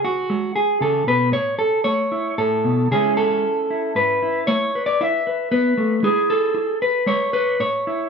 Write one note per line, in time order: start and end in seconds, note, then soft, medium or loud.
0.00 0.24 C#3 medium
0.05 0.55 F#4 loud
0.30 0.76 G#3 medium
0.56 0.81 G#4 loud
0.81 1.07 C#3 medium
0.81 1.07 A4 loud
1.07 1.33 B2 medium
1.07 1.33 B4 loud
1.32 1.80 A2 medium
1.32 1.58 C#5 loud
1.59 1.84 A4 medium
1.84 2.32 A3 medium
1.84 2.37 C#5 loud
2.12 2.92 E4 medium
2.38 2.65 A2 medium
2.38 2.91 A4 medium
2.64 2.91 B2 medium
2.91 3.38 C#3 medium
2.91 3.44 G#3 medium
2.91 4.46 C#4 medium
2.91 3.70 E4 medium
2.91 3.17 G#4 loud
3.17 3.96 A4 loud
3.70 4.22 E4 soft
3.95 4.43 G#2 medium
3.95 4.47 B4 loud
4.22 4.75 E4 medium
4.47 4.95 A3 medium
4.47 4.86 C#5 loud
4.75 5.26 B4 soft
4.86 5.01 D5 loud
5.01 5.47 E4 medium
5.01 6.04 E5 loud
5.27 5.50 B4 medium
5.51 5.77 B3 medium
5.51 6.03 B4 loud
5.78 6.03 A3 medium
6.03 6.50 G#3 medium
6.03 6.54 E4 medium
6.03 6.82 G#4 loud
6.30 6.82 A4 loud
6.54 7.02 E4 medium
6.82 7.32 B4 loud
7.06 7.54 G#3 medium
7.06 7.59 C#5 loud
7.33 7.60 B4 loud
7.60 8.08 A2 medium
7.60 8.09 C#5 loud
7.87 8.09 E4 medium